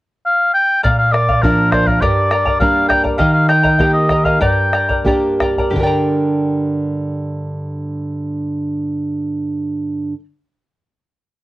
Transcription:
0.26 0.53 F5 medium
0.54 0.82 G5 loud
0.83 1.99 A#2 medium
0.83 1.12 A#4 medium
0.83 1.13 D5 medium
0.83 0.97 F5 medium
0.83 1.13 F5 medium
0.83 bombo low medium
0.98 1.14 F5 medium
1.12 1.28 A#4 medium
1.12 1.44 D5 medium
1.12 1.29 D5 medium
1.12 1.28 F5 medium
1.12 bombo rim soft
1.29 1.43 D5 soft
1.29 1.43 F5 soft
1.29 bombo low medium
1.42 2.00 F3 soft
1.42 2.01 A#3 soft
1.42 2.01 D4 medium
1.42 1.73 A#4 medium
1.42 1.71 A#4 medium
1.42 1.72 D5 medium
1.42 1.73 F5 medium
1.42 bombo low medium
1.71 1.87 A#4 medium
1.71 1.88 C5 medium
1.71 1.88 D5 medium
1.71 1.86 F5 medium
1.71 bombo rim medium
1.71 bombo low soft
1.87 2.03 A#4 medium
1.87 2.01 D5 soft
1.87 2.02 F5 soft
1.87 bombo low medium
2.01 3.17 G2 medium
2.01 2.31 G4 medium
2.01 2.30 A#4 medium
2.01 2.59 D5 medium
2.01 2.31 D5 medium
2.01 2.30 G5 medium
2.01 2.31 A#5 medium
2.01 bombo low medium
2.31 2.46 A#4 medium
2.31 2.45 D5 medium
2.31 2.46 G5 medium
2.31 2.44 A#5 medium
2.31 bombo rim medium
2.46 2.59 A#4 soft
2.46 2.60 D5 soft
2.46 2.60 A#5 soft
2.46 bombo low medium
2.60 3.19 G3 soft
2.60 3.19 A#3 soft
2.60 3.19 D4 soft
2.60 2.88 A#4 medium
2.60 2.88 D5 medium
2.60 2.88 F5 medium
2.60 2.87 G5 medium
2.60 2.89 A#5 medium
2.60 bombo low medium
2.89 3.03 A#4 soft
2.89 3.03 D5 medium
2.89 3.04 G5 soft
2.89 3.02 G5 medium
2.89 3.02 A#5 medium
2.89 bombo rim soft
2.89 bombo low soft
3.04 3.18 A#4 soft
3.04 3.18 D5 soft
3.04 3.18 A#5 soft
3.04 bombo low soft
3.18 4.38 D#3 medium
3.18 3.49 G4 medium
3.18 3.47 A#4 medium
3.18 3.48 D#5 medium
3.18 3.32 F5 medium
3.18 3.47 G5 medium
3.18 3.48 A#5 medium
3.18 bombo low medium
3.33 3.48 F5 medium
3.48 3.64 A#4 medium
3.48 3.63 D#5 medium
3.48 3.64 G5 medium
3.48 3.91 G5 medium
3.48 3.62 A#5 medium
3.48 bombo rim soft
3.63 3.78 A#4 soft
3.63 3.79 D#5 soft
3.63 3.79 A#5 medium
3.63 bombo low soft
3.79 4.39 A#3 soft
3.79 4.39 D#4 soft
3.79 4.40 G4 soft
3.79 4.09 A#4 medium
3.79 4.09 D#5 medium
3.79 4.09 G5 medium
3.79 4.10 A#5 medium
3.79 bombo low medium
3.94 4.26 D#5 medium
4.09 4.25 A#4 medium
4.09 4.24 D#5 medium
4.09 4.25 G5 soft
4.09 4.24 A#5 medium
4.09 bombo rim soft
4.09 bombo low soft
4.24 4.40 A#4 soft
4.24 4.41 D#5 soft
4.24 4.40 F5 medium
4.24 4.40 A#5 soft
4.24 bombo low soft
4.41 5.69 G2 medium
4.41 4.73 G4 medium
4.41 4.72 A#4 medium
4.41 4.73 D5 medium
4.41 4.72 G5 medium
4.41 5.02 G5 medium
4.41 4.73 A#5 medium
4.41 bombo low medium
4.73 4.89 A#4 medium
4.73 4.88 D5 medium
4.73 4.89 G5 soft
4.73 4.88 A#5 medium
4.73 bombo rim soft
4.89 5.06 A#4 soft
4.89 5.06 D5 soft
4.89 5.06 A#5 soft
4.89 bombo low medium
5.05 5.73 A#3 soft
5.05 5.74 D4 soft
5.05 5.74 G4 soft
5.05 5.40 A#4 medium
5.05 5.40 D5 medium
5.05 5.39 G5 soft
5.05 5.41 A#5 medium
5.05 bombo low medium
5.40 5.59 A#4 medium
5.40 5.58 D5 medium
5.40 5.58 G5 medium
5.40 5.57 A#5 medium
5.40 bombo rim soft
5.40 bombo low soft
5.58 5.77 A#4 soft
5.58 5.77 D5 soft
5.58 5.76 A#5 medium
5.58 bombo low soft
5.70 10.13 G2 soft
5.70 10.14 D3 soft
5.70 10.17 G4 medium
5.75 10.16 D4 soft
5.75 5.83 G4 soft
5.75 10.20 G5 medium
5.75 bombo low soft
5.79 10.22 A#4 medium
5.79 10.18 A#4 soft
5.79 10.19 G5 soft
5.84 10.24 D5 medium
5.84 10.25 A#5 medium

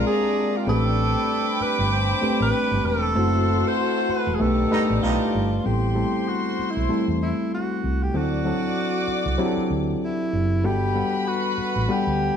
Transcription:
0.00 0.66 C3 medium
0.00 0.66 G#3 medium
0.00 0.69 G#3 medium
0.00 0.66 A#3 medium
0.00 0.67 C4 medium
0.00 0.67 D4 medium
0.00 3.12 D4 medium
0.00 0.65 F4 medium
0.00 0.69 F4 medium
0.00 0.69 A#4 medium
0.00 0.65 D5 medium
0.00 0.65 A#5 medium
0.06 0.58 G#4 loud
0.57 0.68 F4 medium
0.67 1.14 A1 loud
0.67 3.13 C3 medium
0.67 3.13 G3 medium
0.67 1.85 A3 medium
0.67 3.13 C4 medium
0.67 1.85 C4 medium
0.67 1.85 D4 medium
0.67 1.85 G4 medium
0.67 1.64 A4 loud
0.67 1.86 B4 medium
0.67 3.12 G5 medium
0.67 3.12 B5 medium
0.67 3.12 D6 medium
1.60 1.86 B4 loud
1.60 muted fingered electric bass stroke soft
1.79 2.12 G1 medium
1.87 1.94 B4 medium
1.92 2.41 C5 loud
2.22 3.11 A3 medium
2.22 3.11 C4 medium
2.22 3.11 D4 medium
2.22 3.11 G4 medium
2.22 3.11 B4 medium
2.22 muted fingered electric bass stroke soft
2.40 2.50 A1 medium
2.40 2.88 B4 loud
2.71 2.81 G1 medium
2.84 3.16 E1 medium
2.84 3.69 A4 loud
3.15 3.63 F#1 loud
3.15 4.39 E3 medium
3.15 4.33 A3 medium
3.15 5.63 A3 medium
3.15 4.34 C4 medium
3.15 4.39 C4 medium
3.15 4.34 E4 medium
3.15 4.34 F#4 medium
3.15 4.39 F#4 medium
3.15 4.38 A4 medium
3.15 4.34 C5 medium
3.15 4.38 F#5 medium
3.15 4.37 C6 medium
3.68 4.12 C5 loud
4.09 4.36 B4 medium
4.09 muted fingered electric bass stroke soft
4.27 4.37 E1 medium
4.34 4.42 G#4 medium
4.40 4.64 B1 loud
4.40 5.64 D#3 medium
4.40 4.70 A3 medium
4.40 5.64 B3 medium
4.40 4.70 D4 medium
4.40 5.62 D#4 medium
4.40 4.70 D#4 medium
4.40 5.64 G4 medium
4.40 4.70 G4 medium
4.40 5.02 A4 medium
4.40 4.70 B4 medium
4.40 5.62 D5 medium
4.40 5.62 A5 medium
4.71 4.83 A2 medium
4.71 4.83 G3 medium
4.71 5.60 A3 medium
4.71 5.60 D4 medium
4.71 5.60 D#4 medium
4.71 4.83 D#4 medium
4.71 5.60 G4 medium
4.71 5.60 B4 medium
4.71 muted fingered electric bass stroke soft
4.90 5.00 A1 medium
5.02 5.17 B1 loud
5.02 5.49 A2 medium
5.02 5.49 G3 medium
5.02 5.49 D#4 medium
5.02 5.67 F4 medium
5.35 5.58 G1 medium
5.64 6.03 A1 medium
5.64 5.93 G3 medium
5.64 5.94 B3 medium
5.64 5.94 C4 medium
5.64 5.94 E4 medium
5.64 6.30 G4 medium
5.64 5.95 A4 medium
5.64 7.78 C5 medium
5.64 7.78 C6 loud
5.95 6.84 G3 medium
5.95 6.84 A3 soft
5.95 6.84 C4 soft
5.95 6.84 E4 medium
5.95 6.85 A4 medium
6.28 6.72 F#4 medium
6.59 muted fingered electric bass stroke soft
6.71 7.07 E4 medium
6.77 6.86 B1 medium
6.89 8.08 G3 medium
6.89 8.08 A3 medium
6.89 8.08 C4 medium
6.89 8.08 E4 medium
6.89 8.08 A4 medium
6.89 muted fingered electric bass stroke soft
7.08 7.31 E2 medium
7.22 7.51 E4 medium
7.54 8.04 F#4 medium
7.84 8.07 C2 medium
8.03 8.18 G4 medium
8.13 8.51 D2 medium
8.13 8.44 F#3 medium
8.13 8.44 C4 medium
8.13 8.44 D4 medium
8.13 8.44 E4 medium
8.13 9.76 F#4 medium
8.13 8.44 A4 medium
8.13 10.28 D5 medium
8.13 10.28 D6 loud
8.45 9.34 F#3 medium
8.45 9.34 C4 medium
8.45 9.34 D4 medium
8.45 9.35 E4 medium
8.45 9.34 A4 medium
9.08 muted fingered electric bass stroke soft
9.26 9.36 C2 medium
9.38 10.57 F#3 medium
9.38 10.57 C4 medium
9.38 10.57 D4 medium
9.38 10.57 E4 medium
9.38 9.46 G4 medium
9.46 10.61 A4 medium
9.57 muted fingered electric bass stroke soft
9.70 9.94 D2 medium
10.04 10.67 E4 medium
10.33 10.64 F#1 medium
10.63 11.01 G1 loud
10.63 10.93 G3 medium
10.63 10.93 B3 medium
10.63 10.93 D4 medium
10.63 10.93 F#4 medium
10.63 11.29 G4 medium
10.63 10.94 A4 medium
10.63 12.37 B4 medium
10.63 12.37 B5 loud
10.94 11.83 G3 medium
10.94 11.83 B3 medium
10.94 11.84 D4 medium
10.94 11.84 A4 medium
10.94 11.84 F#5 medium
11.28 11.93 F#4 medium
11.58 muted fingered electric bass stroke soft
11.76 11.85 A1 medium
11.88 12.37 G3 medium
11.88 12.37 B3 medium
11.88 12.37 D4 medium
11.88 12.37 G4 loud
11.88 12.37 A4 medium
11.88 12.37 F#5 medium
11.88 muted fingered electric bass stroke soft
12.07 12.30 D2 medium

